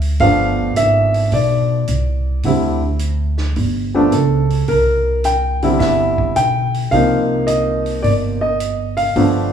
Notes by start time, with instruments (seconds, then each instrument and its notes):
Already playing: upright bass D2
0.01 open hi-hat
0.19 upright bass G1, grand piano F3 A3 B3 D4 F5, kick, open hi-hat
0.76 upright bass G#1, grand piano E5, closed hi-hat
1.14 open hi-hat
1.32 upright bass B1, grand piano D5, kick, open hi-hat
1.87 upright bass C2, closed hi-hat
2.43 upright bass D2, grand piano D3 G3 C4 E4, kick, open hi-hat
2.99 closed hi-hat
3.38 snare
3.56 upright bass G1, kick, open hi-hat
3.94 grand piano F3 A3 B3 D4
4.12 upright bass C#2, grand piano A4, closed hi-hat
4.50 open hi-hat
4.68 upright bass C2, grand piano A#4, kick, open hi-hat
5.24 grand piano G5, closed hi-hat
5.62 grand piano D3 G3 C4 E4, open hi-hat
5.79 upright bass G1, grand piano E5, kick, snare, open hi-hat
6.18 kick
6.36 upright bass B1, grand piano G5, closed hi-hat
6.74 open hi-hat
6.91 upright bass C2, grand piano C3 F3 A#3 D#4 F5, kick, open hi-hat
7.47 grand piano D#5, closed hi-hat
7.86 open hi-hat
8.03 upright bass G1, grand piano D5, kick, open hi-hat
8.41 grand piano D#5
8.60 closed hi-hat
8.97 grand piano F5, open hi-hat
9.16 upright bass G1, grand piano F3 A3 B3 D4, kick, open hi-hat